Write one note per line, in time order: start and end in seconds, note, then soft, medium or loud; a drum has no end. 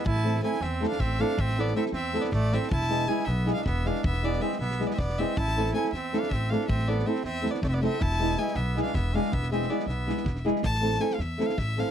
0.05 0.38 A1 loud
0.05 0.41 E4 medium
0.05 0.41 A5 medium
0.05 kick medium
0.16 snare soft
0.23 0.38 A3 medium
0.23 0.39 C4 medium
0.23 0.38 E4 medium
0.23 0.39 A4 medium
0.23 snare soft
0.36 snare soft
0.41 0.56 A3 medium
0.41 0.57 C4 medium
0.41 0.57 E4 medium
0.41 0.63 E4 medium
0.41 0.57 A4 medium
0.41 0.64 G#5 medium
0.41 snare soft
0.54 snare soft
0.61 0.84 E2 medium
0.61 0.88 C4 medium
0.61 0.87 E5 medium
0.61 snare soft
0.81 0.95 A3 medium
0.81 0.95 C4 medium
0.81 0.96 E4 medium
0.81 0.96 A4 medium
0.81 snare soft
0.88 1.01 D4 medium
0.88 1.01 F5 medium
0.92 snare soft
0.99 1.22 A1 loud
0.99 1.22 C4 medium
0.99 1.22 E5 medium
0.99 kick medium
0.99 snare soft
1.19 1.34 A3 medium
1.19 1.34 C4 medium
1.19 1.42 D4 medium
1.19 1.34 E4 medium
1.19 1.35 A4 medium
1.19 1.41 F5 medium
1.19 snare soft
1.31 snare soft
1.38 1.71 A1 loud
1.38 1.61 C4 medium
1.38 1.61 E5 loud
1.38 kick medium
1.49 snare soft
1.57 1.72 A3 medium
1.57 1.75 B3 medium
1.57 1.72 C4 medium
1.57 1.72 E4 medium
1.57 1.72 A4 medium
1.57 1.76 D5 medium
1.57 snare soft
1.67 snare soft
1.75 1.89 A3 medium
1.75 1.90 C4 medium
1.75 1.84 C4 medium
1.75 1.90 E4 medium
1.75 1.90 A4 medium
1.75 1.84 E5 medium
1.75 snare soft
1.86 snare soft
1.92 2.16 E2 medium
1.92 2.21 C4 medium
1.92 2.23 E5 medium
1.92 snare soft
2.13 2.28 A3 medium
2.13 2.28 C4 medium
2.13 2.29 E4 medium
2.13 2.29 A4 medium
2.13 snare soft
2.20 2.32 B3 medium
2.20 2.32 D5 medium
2.24 snare soft
2.32 2.55 A1 loud
2.32 2.55 A3 medium
2.32 2.55 D5 medium
2.32 kick medium
2.32 snare soft
2.52 2.67 A3 medium
2.52 2.67 C4 medium
2.52 2.71 C4 medium
2.52 2.68 E4 medium
2.52 2.68 A4 medium
2.52 2.70 E5 medium
2.52 snare soft
2.63 snare soft
2.71 3.05 E1 loud
2.71 3.09 E4 medium
2.71 3.09 A5 loud
2.71 kick medium
2.81 snare soft
2.89 3.04 G#3 medium
2.89 3.04 B3 medium
2.89 3.04 E4 medium
2.89 3.05 G#4 medium
2.89 snare soft
3.06 3.22 G#3 medium
3.06 3.22 B3 medium
3.06 3.23 E4 medium
3.06 3.30 E4 medium
3.06 3.22 G#4 medium
3.06 3.26 G#5 medium
3.06 snare soft
3.19 snare soft
3.25 3.50 B1 loud
3.25 3.54 B3 medium
3.25 3.52 E5 medium
3.25 snare soft
3.45 3.60 G#3 medium
3.45 3.61 B3 medium
3.45 3.61 E4 medium
3.45 3.61 G#4 medium
3.45 snare soft
3.54 3.66 D4 medium
3.54 3.64 F5 medium
3.54 snare soft
3.65 3.89 E1 loud
3.65 3.89 B3 medium
3.65 3.87 E5 medium
3.65 kick medium
3.65 snare soft
3.84 3.99 G#3 medium
3.84 4.00 B3 medium
3.84 4.05 D4 medium
3.84 4.00 E4 medium
3.84 4.00 G#4 medium
3.84 4.04 F5 medium
3.84 snare soft
3.95 snare soft
4.04 4.37 E1 loud
4.04 4.26 B3 medium
4.04 4.26 E5 medium
4.04 kick medium
4.13 snare soft
4.22 4.37 G#3 medium
4.22 4.37 B3 soft
4.22 4.45 B3 medium
4.22 4.38 E4 medium
4.22 4.38 G#4 medium
4.22 4.43 D5 medium
4.22 snare soft
4.33 snare soft
4.40 4.55 G#3 medium
4.40 4.55 B3 medium
4.40 4.59 C4 medium
4.40 4.55 E4 medium
4.40 4.56 G#4 medium
4.40 4.59 E5 medium
4.40 snare soft
4.52 snare soft
4.59 4.82 B1 medium
4.59 4.86 B3 medium
4.59 4.88 E5 medium
4.59 snare soft
4.71 snare soft
4.79 4.94 G#3 medium
4.79 4.94 B3 medium
4.79 4.94 E4 medium
4.79 4.95 G#4 medium
4.79 snare soft
4.86 4.94 B3 medium
4.86 4.92 D5 medium
4.91 5.00 E5 medium
4.91 snare soft
4.95 5.22 E1 medium
4.95 5.02 C4 medium
4.95 5.20 D5 medium
4.95 kick medium
4.99 5.22 B3 medium
4.99 snare soft
5.10 snare soft
5.18 5.33 G#3 medium
5.18 5.33 B3 medium
5.18 5.40 C4 medium
5.18 5.33 E4 medium
5.18 5.33 G#4 medium
5.18 5.38 E5 medium
5.18 snare soft
5.37 5.70 A1 loud
5.37 5.75 E4 loud
5.37 5.74 A5 loud
5.37 kick medium
5.48 snare soft
5.56 5.70 A3 medium
5.56 5.70 C4 soft
5.56 5.70 E4 medium
5.56 5.71 A4 medium
5.56 snare soft
5.66 snare soft
5.73 5.87 A3 medium
5.73 5.88 C4 medium
5.73 5.88 E4 medium
5.73 5.92 E4 medium
5.73 5.88 A4 medium
5.73 5.91 G#5 medium
5.73 snare soft
5.84 snare soft
5.92 6.15 E2 medium
5.92 6.22 C4 medium
5.92 6.20 E5 medium
5.92 snare soft
6.13 6.27 A3 medium
6.13 6.27 C4 medium
6.13 6.27 E4 medium
6.13 6.27 A4 medium
6.13 snare soft
6.19 6.35 D4 medium
6.19 6.31 F5 medium
6.23 snare soft
6.29 6.54 A1 loud
6.29 6.54 C4 medium
6.29 6.51 E5 medium
6.29 kick medium
6.29 snare soft
6.50 6.65 A3 medium
6.50 6.65 C4 medium
6.50 6.69 D4 medium
6.50 6.65 E4 medium
6.50 6.66 A4 medium
6.50 6.67 F5 medium
6.50 snare soft
6.61 snare soft
6.67 7.02 A1 loud
6.67 6.91 C4 medium
6.67 6.89 E5 medium
6.67 kick medium
6.79 snare soft
6.87 7.01 A3 medium
6.87 7.09 B3 medium
6.87 7.02 C4 medium
6.87 7.02 E4 soft
6.87 7.03 A4 medium
6.87 7.08 D5 medium
6.87 snare soft
6.99 snare soft
7.06 7.20 A3 medium
7.06 7.20 C4 medium
7.06 7.24 C4 medium
7.06 7.21 E4 medium
7.06 7.21 A4 medium
7.06 7.24 E5 medium
7.15 snare soft
7.24 7.47 E2 medium
7.24 7.52 C4 medium
7.24 7.52 E5 medium
7.24 snare soft
7.42 7.57 A3 medium
7.42 7.58 C4 medium
7.42 7.58 E4 medium
7.42 7.58 A4 medium
7.42 snare soft
7.51 7.62 B3 medium
7.51 7.63 D5 medium
7.55 snare soft
7.62 7.85 F1 loud
7.62 7.70 A3 medium
7.62 7.70 D5 medium
7.62 kick medium
7.62 snare soft
7.68 7.74 C4 medium
7.68 7.75 E5 medium
7.73 7.82 B3 medium
7.73 7.83 D5 medium
7.81 7.96 A3 medium
7.81 7.97 C4 medium
7.81 8.02 C4 medium
7.81 7.97 E4 medium
7.81 7.97 A4 medium
7.81 8.03 E5 medium
7.81 snare soft
7.93 snare soft
8.00 8.34 E1 loud
8.00 8.39 E4 medium
8.00 8.40 A5 loud
8.00 kick medium
8.12 snare soft
8.19 8.34 G#3 medium
8.19 8.34 B3 medium
8.19 8.34 E4 medium
8.19 8.35 G#4 medium
8.19 snare soft
8.30 snare soft
8.37 8.51 G#3 medium
8.37 8.52 B3 medium
8.37 8.52 E4 medium
8.37 8.57 E4 medium
8.37 8.52 G#4 medium
8.37 8.57 G#5 medium
8.37 snare soft
8.48 snare soft
8.55 8.79 B1 loud
8.55 8.81 B3 medium
8.55 8.82 E5 medium
8.55 snare soft
8.75 8.90 G#3 medium
8.75 8.90 B3 medium
8.75 8.91 E4 medium
8.75 8.91 G#4 medium
8.75 snare soft
8.82 8.96 D4 medium
8.82 8.96 F5 medium
8.87 snare soft
8.94 9.17 E1 loud
8.94 9.15 B3 medium
8.94 9.16 E5 medium
8.94 kick medium
8.94 snare soft
9.14 9.29 G#3 medium
9.14 9.29 B3 medium
9.14 9.33 D4 medium
9.14 9.29 E4 medium
9.14 9.29 G#4 medium
9.14 9.34 F5 medium
9.14 snare soft
9.25 snare soft
9.31 9.65 E1 loud
9.31 9.51 B3 medium
9.31 9.51 E5 medium
9.31 kick medium
9.43 snare soft
9.51 9.66 G#3 medium
9.51 9.65 B3 medium
9.51 9.72 C4 medium
9.51 9.66 E4 medium
9.51 9.66 G#4 medium
9.51 9.71 E5 medium
9.51 snare soft
9.62 snare soft
9.69 9.83 G#3 medium
9.69 9.83 B3 medium
9.69 9.88 B3 medium
9.69 9.84 E4 soft
9.69 9.84 G#4 medium
9.69 9.87 D5 medium
9.69 snare soft
9.80 snare soft
9.86 10.10 B1 medium
9.86 10.43 B3 medium
9.86 10.42 E5 medium
9.86 snare soft
10.07 10.22 G#3 medium
10.07 10.22 B3 medium
10.07 10.22 E4 medium
10.07 10.22 G#4 medium
10.07 snare soft
10.17 snare soft
10.24 10.48 E1 medium
10.24 kick medium
10.24 snare soft
10.36 snare soft
10.45 10.60 G#3 medium
10.45 10.60 B3 medium
10.45 10.60 E4 medium
10.45 10.60 G#4 medium
10.45 snare soft
10.56 snare soft
10.63 10.96 A1 loud
10.63 11.02 A5 loud
10.63 kick medium
10.75 snare soft
10.81 10.96 A3 medium
10.81 10.96 C4 medium
10.81 10.97 E4 medium
10.81 10.97 A4 medium
10.81 snare soft
10.93 snare soft
10.99 11.14 A3 medium
10.99 11.14 C4 medium
10.99 11.15 E4 medium
10.99 11.15 A4 medium
10.99 11.16 G#5 medium
10.99 snare soft
11.11 11.21 F5 medium
11.11 snare soft
11.19 11.42 E2 medium
11.19 11.47 E5 medium
11.19 snare soft
11.38 11.53 A3 medium
11.38 11.53 C4 medium
11.38 11.53 E4 medium
11.38 11.54 A4 medium
11.38 snare soft
11.46 11.59 F5 medium
11.46 snare soft
11.58 11.81 A1 medium
11.58 11.81 E5 loud
11.58 kick medium
11.58 snare soft
11.77 11.91 A3 medium
11.77 11.91 C4 medium
11.77 11.91 E4 medium
11.77 11.91 A4 medium
11.77 11.91 F5 medium
11.77 snare soft
11.88 snare soft